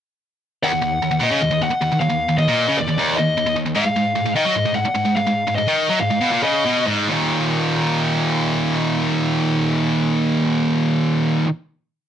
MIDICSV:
0, 0, Header, 1, 4, 480
1, 0, Start_track
1, 0, Key_signature, -6, "minor"
1, 0, Tempo, 389358
1, 795, Time_signature, 4, 2, 24, 8
1, 5118, Tempo, 404858
1, 7038, Tempo, 439239
1, 8478, Tempo, 458015
1, 13712, End_track
2, 0, Start_track
2, 0, Title_t, "Lead electric guitar"
2, 0, Program_c, 0, 29
2, 789, Note_on_c, 0, 78, 111
2, 1461, Note_off_c, 0, 78, 0
2, 1525, Note_on_c, 0, 75, 103
2, 2002, Note_off_c, 0, 75, 0
2, 2007, Note_on_c, 0, 78, 110
2, 2446, Note_off_c, 0, 78, 0
2, 2466, Note_on_c, 0, 77, 106
2, 2926, Note_off_c, 0, 77, 0
2, 2931, Note_on_c, 0, 75, 93
2, 3387, Note_off_c, 0, 75, 0
2, 3427, Note_on_c, 0, 74, 93
2, 3905, Note_on_c, 0, 75, 98
2, 3924, Note_off_c, 0, 74, 0
2, 4356, Note_off_c, 0, 75, 0
2, 4641, Note_on_c, 0, 77, 112
2, 5307, Note_off_c, 0, 77, 0
2, 5363, Note_on_c, 0, 75, 97
2, 5832, Note_off_c, 0, 75, 0
2, 5836, Note_on_c, 0, 78, 95
2, 6309, Note_off_c, 0, 78, 0
2, 6314, Note_on_c, 0, 77, 96
2, 6776, Note_off_c, 0, 77, 0
2, 6781, Note_on_c, 0, 75, 90
2, 7279, Note_off_c, 0, 75, 0
2, 7290, Note_on_c, 0, 77, 100
2, 7720, Note_off_c, 0, 77, 0
2, 7760, Note_on_c, 0, 75, 85
2, 8203, Note_off_c, 0, 75, 0
2, 13712, End_track
3, 0, Start_track
3, 0, Title_t, "Distorted electric guitar"
3, 0, Program_c, 1, 30
3, 785, Note_on_c, 1, 39, 103
3, 886, Note_off_c, 1, 39, 0
3, 901, Note_on_c, 1, 39, 75
3, 995, Note_off_c, 1, 39, 0
3, 1010, Note_on_c, 1, 39, 75
3, 1214, Note_off_c, 1, 39, 0
3, 1261, Note_on_c, 1, 39, 75
3, 1354, Note_off_c, 1, 39, 0
3, 1369, Note_on_c, 1, 39, 70
3, 1482, Note_on_c, 1, 46, 94
3, 1501, Note_off_c, 1, 39, 0
3, 1610, Note_off_c, 1, 46, 0
3, 1617, Note_on_c, 1, 49, 104
3, 1735, Note_on_c, 1, 39, 77
3, 1737, Note_off_c, 1, 49, 0
3, 1841, Note_off_c, 1, 39, 0
3, 1856, Note_on_c, 1, 39, 72
3, 1975, Note_off_c, 1, 39, 0
3, 1990, Note_on_c, 1, 39, 73
3, 2085, Note_off_c, 1, 39, 0
3, 2236, Note_on_c, 1, 39, 72
3, 2345, Note_off_c, 1, 39, 0
3, 2359, Note_on_c, 1, 39, 70
3, 2458, Note_off_c, 1, 39, 0
3, 2473, Note_on_c, 1, 39, 72
3, 2566, Note_off_c, 1, 39, 0
3, 2581, Note_on_c, 1, 39, 72
3, 2778, Note_off_c, 1, 39, 0
3, 2817, Note_on_c, 1, 39, 81
3, 2923, Note_off_c, 1, 39, 0
3, 2937, Note_on_c, 1, 39, 80
3, 3061, Note_on_c, 1, 46, 100
3, 3064, Note_off_c, 1, 39, 0
3, 3299, Note_off_c, 1, 46, 0
3, 3308, Note_on_c, 1, 49, 107
3, 3423, Note_off_c, 1, 49, 0
3, 3429, Note_on_c, 1, 39, 71
3, 3530, Note_off_c, 1, 39, 0
3, 3544, Note_on_c, 1, 39, 75
3, 3657, Note_off_c, 1, 39, 0
3, 3671, Note_on_c, 1, 39, 112
3, 3905, Note_off_c, 1, 39, 0
3, 3927, Note_on_c, 1, 39, 81
3, 4112, Note_off_c, 1, 39, 0
3, 4156, Note_on_c, 1, 39, 80
3, 4254, Note_off_c, 1, 39, 0
3, 4269, Note_on_c, 1, 39, 75
3, 4371, Note_off_c, 1, 39, 0
3, 4386, Note_on_c, 1, 39, 74
3, 4490, Note_off_c, 1, 39, 0
3, 4505, Note_on_c, 1, 39, 73
3, 4623, Note_on_c, 1, 44, 113
3, 4630, Note_off_c, 1, 39, 0
3, 4735, Note_off_c, 1, 44, 0
3, 4750, Note_on_c, 1, 44, 72
3, 4864, Note_off_c, 1, 44, 0
3, 4879, Note_on_c, 1, 44, 83
3, 5071, Note_off_c, 1, 44, 0
3, 5121, Note_on_c, 1, 44, 79
3, 5228, Note_off_c, 1, 44, 0
3, 5242, Note_on_c, 1, 44, 71
3, 5355, Note_off_c, 1, 44, 0
3, 5360, Note_on_c, 1, 51, 97
3, 5466, Note_off_c, 1, 51, 0
3, 5469, Note_on_c, 1, 54, 105
3, 5579, Note_off_c, 1, 54, 0
3, 5594, Note_on_c, 1, 44, 79
3, 5698, Note_off_c, 1, 44, 0
3, 5713, Note_on_c, 1, 44, 79
3, 5801, Note_off_c, 1, 44, 0
3, 5815, Note_on_c, 1, 44, 77
3, 5931, Note_off_c, 1, 44, 0
3, 6064, Note_on_c, 1, 44, 73
3, 6169, Note_off_c, 1, 44, 0
3, 6183, Note_on_c, 1, 44, 73
3, 6302, Note_off_c, 1, 44, 0
3, 6318, Note_on_c, 1, 44, 69
3, 6425, Note_off_c, 1, 44, 0
3, 6439, Note_on_c, 1, 44, 72
3, 6626, Note_off_c, 1, 44, 0
3, 6686, Note_on_c, 1, 44, 79
3, 6796, Note_off_c, 1, 44, 0
3, 6811, Note_on_c, 1, 44, 79
3, 6922, Note_off_c, 1, 44, 0
3, 6927, Note_on_c, 1, 51, 99
3, 7152, Note_off_c, 1, 51, 0
3, 7171, Note_on_c, 1, 54, 103
3, 7271, Note_off_c, 1, 54, 0
3, 7284, Note_on_c, 1, 44, 72
3, 7389, Note_off_c, 1, 44, 0
3, 7402, Note_on_c, 1, 44, 76
3, 7510, Note_off_c, 1, 44, 0
3, 7515, Note_on_c, 1, 47, 105
3, 7620, Note_off_c, 1, 47, 0
3, 7631, Note_on_c, 1, 46, 107
3, 7739, Note_off_c, 1, 46, 0
3, 7759, Note_on_c, 1, 49, 103
3, 7984, Note_off_c, 1, 49, 0
3, 8001, Note_on_c, 1, 47, 103
3, 8230, Note_off_c, 1, 47, 0
3, 8236, Note_on_c, 1, 44, 97
3, 8469, Note_on_c, 1, 39, 98
3, 8473, Note_off_c, 1, 44, 0
3, 8497, Note_on_c, 1, 46, 97
3, 8518, Note_on_c, 1, 51, 105
3, 13047, Note_off_c, 1, 39, 0
3, 13074, Note_off_c, 1, 46, 0
3, 13094, Note_off_c, 1, 51, 0
3, 13712, End_track
4, 0, Start_track
4, 0, Title_t, "Muted distorted electric guitar strokes"
4, 2100, Note_on_c, 9, 29, 60
4, 2223, Note_off_c, 9, 29, 0
4, 5945, Note_on_c, 9, 29, 59
4, 6064, Note_off_c, 9, 29, 0
4, 13712, End_track
0, 0, End_of_file